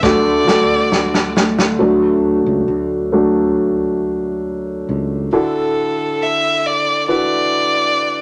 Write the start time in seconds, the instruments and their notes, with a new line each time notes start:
Already playing: steel-string acoustic guitar B3 D4 G4
0.02 fretless electric bass D2, grand piano D3 A3 D4 F#4 A4, steel-string acoustic guitar D3, violin D5, kick, snare
0.25 steel-string acoustic guitar A3
0.47 fretless electric bass D2, grand piano A3 D4 F#4 A4, steel-string acoustic guitar F#4, snare
0.70 steel-string acoustic guitar D4
0.92 steel-string acoustic guitar F#4, snare
1.14 steel-string acoustic guitar D4, snare
1.36 steel-string acoustic guitar A3, snare
1.58 steel-string acoustic guitar D4, snare
1.79 fretless electric bass D2, grand piano F#3 A3 D4
2.46 fretless electric bass C#2
2.68 fretless electric bass D2
3.12 grand piano F#3 A3 D4
4.89 fretless electric bass C#2
5.33 grand piano D3 D4 E4 F#4 A4, violin A4
6.22 violin E5
6.66 violin D5
7.08 grand piano D4 E4 F#4 B4, violin D5